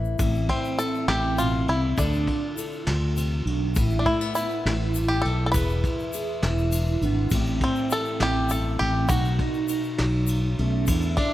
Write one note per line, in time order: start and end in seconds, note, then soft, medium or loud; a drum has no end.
0.00 0.16 A1 loud
0.00 0.19 A2 medium
0.00 1.98 E3 medium
0.00 0.17 C4 medium
0.00 0.16 E4 medium
0.05 shaker soft
0.19 0.47 A1 medium
0.19 1.08 A2 medium
0.19 1.93 C4 loud
0.19 0.50 E4 medium
0.19 kick loud
0.19 ride medium
0.19 shaker medium
0.35 shaker soft
0.49 0.80 C4 medium
0.49 0.79 E4 medium
0.49 kick medium
0.49 ride medium
0.65 shaker soft
0.79 2.01 E4 medium
0.79 1.06 A4 loud
0.79 ride medium
0.79 shaker medium
0.94 shaker soft
1.08 1.65 A1 medium
1.08 1.39 A2 medium
1.08 1.39 G4 loud
1.08 snare medium
1.08 ride medium
1.38 1.67 B2 medium
1.38 1.69 F4 medium
1.38 ride medium
1.38 shaker medium
1.68 1.96 C2 medium
1.68 1.97 C3 medium
1.68 1.99 E4 medium
1.68 ride medium
1.98 2.26 D2 medium
1.98 2.86 D3 medium
1.98 2.53 D4 loud
1.98 3.43 D4 medium
1.98 2.57 A4 medium
1.98 kick loud
1.98 ride medium
1.98 shaker medium
2.13 shaker soft
2.27 3.73 F4 medium
2.27 kick medium
2.27 ride medium
2.56 2.84 E4 medium
2.56 3.73 A4 medium
2.56 ride medium
2.56 shaker medium
2.72 shaker soft
2.86 3.43 D2 medium
2.86 3.16 D3 medium
2.86 3.47 F4 loud
2.86 snare medium
2.86 ride medium
3.16 3.46 C3 medium
3.16 ride medium
3.16 shaker medium
3.45 3.74 B1 medium
3.45 3.76 B2 medium
3.45 3.76 D4 loud
3.45 ride soft
3.75 4.04 A1 medium
3.75 4.63 A2 medium
3.75 5.52 E4 loud
3.75 5.85 E4 medium
3.75 kick loud
3.75 ride medium
3.75 shaker medium
3.90 shaker soft
3.99 4.06 D4 medium
4.06 4.21 A3 medium
4.06 4.34 E4 medium
4.06 kick medium
4.06 ride soft
4.21 4.35 B3 soft
4.21 shaker soft
4.35 5.51 B3 medium
4.35 5.12 E4 medium
4.35 ride medium
4.35 shaker medium
4.50 shaker soft
4.65 5.22 A1 medium
4.65 4.95 A2 medium
4.65 snare medium
4.65 ride medium
4.95 5.24 G2 medium
4.95 ride medium
4.95 shaker medium
5.08 5.24 G4 medium
5.22 5.53 B1 medium
5.22 5.54 F2 medium
5.22 5.45 A4 loud
5.22 ride soft
5.46 5.51 A4 medium
5.52 5.82 E1 medium
5.52 7.33 E2 medium
5.52 6.15 E4 loud
5.52 6.97 B4 loud
5.52 kick medium
5.52 ride medium
5.52 shaker medium
5.56 6.14 G#4 medium
5.69 shaker soft
5.84 7.29 E4 medium
5.84 kick medium
5.84 ride medium
5.84 shaker soft
5.99 shaker soft
6.13 6.44 G#4 loud
6.13 7.29 G#4 medium
6.13 ride medium
6.13 shaker loud
6.42 6.99 E1 medium
6.42 9.11 E3 medium
6.42 7.03 E4 loud
6.42 snare medium
6.42 ride medium
6.42 shaker soft
6.58 shaker soft
6.72 ride medium
6.72 shaker loud
6.87 shaker soft
7.01 7.30 G#1 medium
7.01 7.29 B3 medium
7.01 7.30 D4 loud
7.01 ride medium
7.01 shaker soft
7.30 7.60 A1 medium
7.30 8.78 A2 medium
7.30 9.11 C4 loud
7.30 kick medium
7.30 ride medium
7.30 shaker medium
7.34 7.91 G4 medium
7.46 shaker soft
7.61 7.93 C4 medium
7.61 9.08 E4 medium
7.61 kick medium
7.61 ride medium
7.76 shaker soft
7.90 9.07 G4 medium
7.90 8.23 A4 loud
7.90 ride medium
7.90 shaker medium
8.05 shaker soft
8.20 8.77 A1 medium
8.20 8.50 F2 medium
8.20 8.50 G4 loud
8.20 snare medium
8.20 ride medium
8.49 8.80 G2 medium
8.49 8.82 A4 medium
8.49 ride medium
8.49 shaker loud
8.79 9.09 A1 medium
8.79 9.09 A2 medium
8.79 9.11 G4 loud
8.79 ride soft
9.09 9.38 B1 medium
9.09 10.84 B2 medium
9.09 9.68 D#4 loud
9.09 9.39 D#4 medium
9.09 10.54 F#4 medium
9.09 kick loud
9.09 ride medium
9.09 shaker loud
9.25 shaker soft
9.39 9.69 D#4 medium
9.39 kick medium
9.39 ride soft
9.54 shaker soft
9.68 10.60 D#4 loud
9.68 10.85 D#4 medium
9.68 ride medium
9.68 shaker loud
9.84 shaker soft
9.98 10.56 B1 medium
9.98 10.85 F#3 medium
9.98 snare medium
9.98 ride medium
10.27 ride medium
10.27 shaker loud
10.58 10.87 B1 medium
10.58 11.34 A3 medium
10.58 10.90 C#4 medium
10.58 ride soft
10.87 11.16 E2 medium
10.87 11.34 E2 medium
10.87 11.34 D4 loud
10.87 11.34 E4 medium
10.87 kick medium
10.87 ride medium
10.87 shaker loud
11.02 shaker soft
11.17 11.34 D4 medium
11.17 kick medium
11.17 ride medium